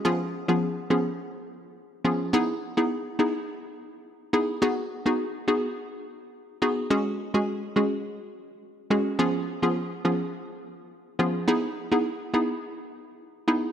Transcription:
X:1
M:4/4
L:1/16
Q:1/4=105
K:C#mix
V:1 name="Synth pluck"
[E,B,CEG] z2 [E,B,CEG] z2 [E,B,CEG] z6 z [E,B,CEG]2 | [B,D=EG] z2 [B,DEG] z2 [B,DEG] z6 z [B,DEG]2 | [B,DFG] z2 [B,DFG] z2 [B,DFG] z6 z [B,DFG]2 | [G,CFG] z2 [G,CFG] z2 [G,CFG] z6 z [G,CFG]2 |
[E,B,CEG] z2 [E,B,CEG] z2 [E,B,CEG] z6 z [E,B,CEG]2 | [B,D=EG] z2 [B,DEG] z2 [B,DEG] z6 z [B,DEG]2 |]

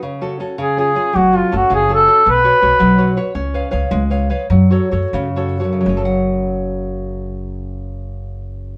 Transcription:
X:1
M:6/8
L:1/8
Q:3/8=106
K:F#m
V:1 name="Duduk"
z3 G G2 | F ^E F G A2 | B4- B z | z6 |
z6 | z6 | z6 |]
V:2 name="Nylon-string guitar"
C, [CFA] [CFA] C, [C^EG] [CEG] | F, [CFA] [CFA] C, [CFA] [CFA] | B, [FBc] [FBc] F, [FBc] [FBc] | C [Bc^e] [Bce] G, [Bce] [Bce] |
F, [FAc] [FAc] C, [FAc] [FAc] | [F,,C,F,CAf]6- | [F,,C,F,CAf]6 |]
V:3 name="Upright bass" clef=bass
z6 | F,,,2 F,,, F,,,3 | B,,,2 B,,, B,,,3 | C,,2 C,, C,,3 |
F,,2 F,, F,,3 | F,,,6- | F,,,6 |]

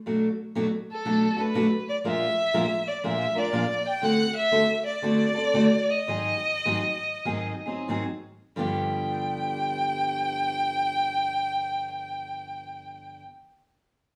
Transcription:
X:1
M:4/4
L:1/8
Q:"Swing" 1/4=109
K:Gmix
V:1 name="Violin"
z3 A2 B2 d | e3 d e d2 g | ^f e2 d4 _e- | _e6 z2 |
g8- | g8 |]
V:2 name="Steel-string acoustic guitar"
[B,,^F,A,D^F] z [B,,F,A,DF] z [B,,F,A,DF] [A,DF] [B,,F,A,DF] z | [_B,,F,_A,DF_B] z [B,,F,A,DFB] z [B,,F,A,DFB] [A,DFB] [B,,F,A,DFB] z | [D,A,C^FA] z [D,A,CFA] z [D,A,CFA] [CFA] [D,A,CFA] z | [_A,,_E,_G,C_E_A] z [A,,E,G,CEA] z [A,,E,G,CEA] [G,CEA] [A,,E,G,CEA] z |
[G,,D,F,B,DG]8- | [G,,D,F,B,DG]8 |]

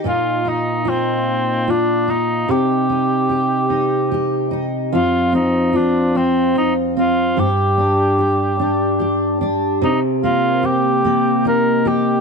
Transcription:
X:1
M:6/8
L:1/8
Q:3/8=49
K:Cm
V:1 name="Cor anglais"
F E C2 D E | G4- G z | F E D C E F | G4- G z |
E F G2 B G |]
V:2 name="Steel-string acoustic guitar"
[B,,F] E F2 F E | [C,G] E G E G E | [F,,F] C F C F C | [G,,G] D G D G D |
C, B, G B, E G |]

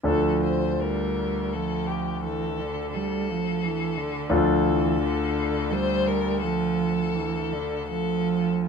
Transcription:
X:1
M:3/4
L:1/8
Q:1/4=85
K:Dm
V:1 name="Violin"
A c B2 A G | A2 A4 | A4 c B | A4 A z |]
V:2 name="Grand piano"
[D,,DFA]6- | [D,,DFA]6 | [D,,DFA]6- | [D,,DFA]6 |]
V:3 name="Cello" clef=bass
F,2 G,2 F,2 | E, D, G, F, E, D, | F, E, D,2 G,2 | F,2 E, D, F,2 |]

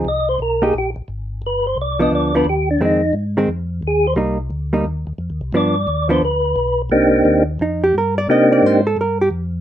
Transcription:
X:1
M:4/4
L:1/16
Q:"Swing" 1/4=175
K:Gphr
V:1 name="Tonewheel organ"
e2 c2 B2 A2 G2 z6 | =B2 c2 d2 e2 d2 B2 G2 D2 | E4 z8 A2 c2 | z16 |
d6 c2 =B6- B z | [B,CDEG]6 z8 z2 | [B,CDEG]6 z8 z2 |]
V:2 name="Hollow-body jazz guitar"
z6 [B,EG]2 z8 | z6 [F,=B,D]4 [F,B,D]2 z4 | [E,A,C]2 z4 [E,A,C]2 z8 | [G,B,E]2 z4 [G,B,E]2 z8 |
[F,=B,D]2 z4 [F,B,D]2 z8 | z8 E2 G2 B2 d2 | e2 d2 c2 =A2 B2 G2 z4 |]
V:3 name="Tonewheel organ" clef=bass
C,,4 =B,,,4 _B,,,2 B,,,2 A,,,4 | G,,,4 C,,4 D,,4 E,,4 | F,,4 A,,4 F,,4 E,,4 | C,,4 D,,4 E,,2 E,,2 (3F,,2 E,,2 C,,2 |
G,,4 E,,4 D,,4 =B,,,4 | C,,4 E,,4 F,,4 G,,4 | C,4 A,,4 G,,4 F,,4 |]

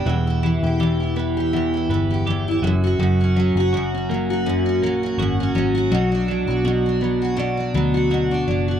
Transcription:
X:1
M:4/4
L:1/16
Q:"Swing 16ths" 1/4=82
K:Em
V:1 name="Clean electric guitar"
E,2 E2 G2 B,2 E2 B,2 G2 F,2 | F,2 ^C2 F2 ^A,2 C2 A,2 F2 C2 | F,2 D2 F2 B,2 D2 B,2 F2 D2 |]
V:2 name="Steel-string acoustic guitar"
E,, E E, G E,, E E, G E,, E E, G E,, E F,, F | F,, ^C F, F F,, C F, F F,, C F, F F,, C F, F | B,, D F, F B,, D F, F B,, D F, F B,, D F, F |]
V:3 name="Fingered electric bass" clef=bass
E,,,3 E,,,6- E,,, G,,,4 F,,,2 | F,,,3 F,,,6- F,,, ^A,,,2 ^G,,,2 G,,,2 | B,,,3 B,,,6- B,,, D,,4 F,,,2 |]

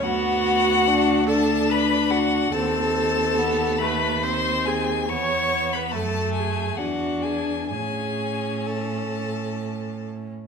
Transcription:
X:1
M:3/4
L:1/16
Q:1/4=70
K:Bdor
V:1 name="Violin"
f6 a2 b2 f2 | a6 b2 =c'2 g2 | c'3 b a2 g2 f2 g2 | g4 a6 z2 |]
V:2 name="Viola"
F6 A2 B2 F2 | A6 B2 =c2 G2 | c3 B A2 G2 F2 G2 | G4 A6 z2 |]
V:3 name="Violin"
B,4 D2 D6 | =C4 B,2 A,2 C4 | B,4 A,4 D4 | C8- C3 z |]
V:4 name="Cello" clef=bass
D,,12 | ^D,,12 | E,,4 F,,4 E,,4 | A,,8- A,,3 z |]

